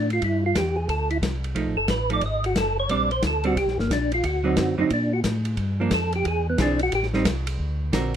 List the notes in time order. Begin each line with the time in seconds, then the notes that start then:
Already playing: A2 D4
0.10 F4, ride
0.21 G2 E4, kick, ride
0.46 F4
0.55 E2 G4, kick, snare, hi-hat pedal, ride
0.76 G#4
0.88 D2 A4, kick, ride
1.11 E4, ride
1.22 C2, kick, snare, hi-hat pedal, ride
1.44 ride
1.55 B1 F3 A3 D#4, kick, ride
1.66 A1
1.77 F#1 A4
1.88 A1 B4, kick, snare, hi-hat pedal, ride
2.10 F3 A3 D#4 D5, ride
2.21 G#1, kick, ride
2.26 D#5
2.44 F#4, ride
2.55 F#1 A4, kick, snare, hi-hat pedal, ride
2.80 C#5
2.89 A#1 G3 C4 D4 D5, kick, ride
3.11 C5, ride
3.22 D2, kick, snare, hi-hat pedal, ride
3.27 A4
3.44 G3 C4 D4 F#4, ride
3.56 C2 G4, kick, ride
3.66 A#1, snare
3.78 G1 A#3, snare
3.90 A#1 D4, kick, snare, hi-hat pedal, ride
4.12 F4, ride
4.24 D2 F#4, kick, ride
4.44 D3 F#3 C4 D#4
4.57 F#2, kick, snare, hi-hat pedal, ride
4.78 F#2 D3 F#3 C4 D#4
4.90 A#2 D4, kick, ride
5.13 F#4
5.24 A2, kick, snare, hi-hat pedal, ride
5.45 ride
5.57 G2, kick, ride
5.80 F3 A#3 D4
5.91 F2 A4, kick, snare, hi-hat pedal, ride
6.13 G4, ride
6.24 E2 G#4, kick, ride
6.50 B3
6.58 B1 E3 C4 D4 G#4, kick, snare, hi-hat pedal, ride
6.62 D4
6.79 F#4, ride
6.92 A1 G4, kick, ride
7.03 snare
7.14 G3 C4 D#4, snare
7.25 C2, kick, snare, hi-hat pedal, ride
7.47 ride
7.59 D2, kick
7.93 A#1 D3 C4 F#4 A#4, kick, snare, hi-hat pedal, ride